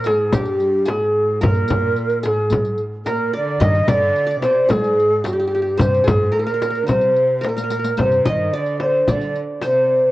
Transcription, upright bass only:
0, 0, Header, 1, 2, 480
1, 0, Start_track
1, 0, Tempo, 546448
1, 1248, Time_signature, 4, 2, 24, 8
1, 8885, End_track
2, 0, Start_track
2, 0, Title_t, "Upright bass"
2, 0, Program_c, 0, 32
2, 293, Note_on_c, 0, 55, 83
2, 473, Note_off_c, 0, 55, 0
2, 1251, Note_on_c, 0, 43, 100
2, 1432, Note_off_c, 0, 43, 0
2, 1490, Note_on_c, 0, 43, 83
2, 1672, Note_off_c, 0, 43, 0
2, 2206, Note_on_c, 0, 55, 93
2, 2389, Note_off_c, 0, 55, 0
2, 3165, Note_on_c, 0, 43, 122
2, 3348, Note_off_c, 0, 43, 0
2, 3403, Note_on_c, 0, 43, 98
2, 3587, Note_off_c, 0, 43, 0
2, 4128, Note_on_c, 0, 55, 87
2, 4311, Note_off_c, 0, 55, 0
2, 5084, Note_on_c, 0, 43, 121
2, 5268, Note_off_c, 0, 43, 0
2, 5333, Note_on_c, 0, 43, 93
2, 5514, Note_off_c, 0, 43, 0
2, 6049, Note_on_c, 0, 55, 83
2, 6231, Note_off_c, 0, 55, 0
2, 7009, Note_on_c, 0, 43, 110
2, 7191, Note_off_c, 0, 43, 0
2, 7252, Note_on_c, 0, 43, 94
2, 7433, Note_off_c, 0, 43, 0
2, 7972, Note_on_c, 0, 55, 77
2, 8153, Note_off_c, 0, 55, 0
2, 8885, End_track
0, 0, End_of_file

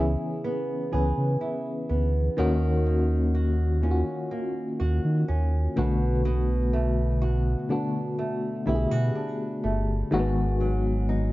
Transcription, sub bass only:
0, 0, Header, 1, 2, 480
1, 0, Start_track
1, 0, Tempo, 967742
1, 1180, Time_signature, 4, 2, 24, 8
1, 5617, End_track
2, 0, Start_track
2, 0, Title_t, "Sub bass"
2, 0, Program_c, 0, 38
2, 0, Note_on_c, 0, 37, 103
2, 82, Note_off_c, 0, 37, 0
2, 464, Note_on_c, 0, 37, 94
2, 561, Note_off_c, 0, 37, 0
2, 584, Note_on_c, 0, 49, 90
2, 681, Note_off_c, 0, 49, 0
2, 943, Note_on_c, 0, 38, 96
2, 1139, Note_off_c, 0, 38, 0
2, 1183, Note_on_c, 0, 39, 99
2, 2002, Note_off_c, 0, 39, 0
2, 2383, Note_on_c, 0, 39, 91
2, 2480, Note_off_c, 0, 39, 0
2, 2503, Note_on_c, 0, 51, 90
2, 2600, Note_off_c, 0, 51, 0
2, 2623, Note_on_c, 0, 39, 88
2, 2819, Note_off_c, 0, 39, 0
2, 2863, Note_on_c, 0, 35, 99
2, 3748, Note_off_c, 0, 35, 0
2, 4303, Note_on_c, 0, 35, 94
2, 4400, Note_off_c, 0, 35, 0
2, 4423, Note_on_c, 0, 47, 92
2, 4520, Note_off_c, 0, 47, 0
2, 4783, Note_on_c, 0, 31, 90
2, 4979, Note_off_c, 0, 31, 0
2, 5022, Note_on_c, 0, 32, 112
2, 5617, Note_off_c, 0, 32, 0
2, 5617, End_track
0, 0, End_of_file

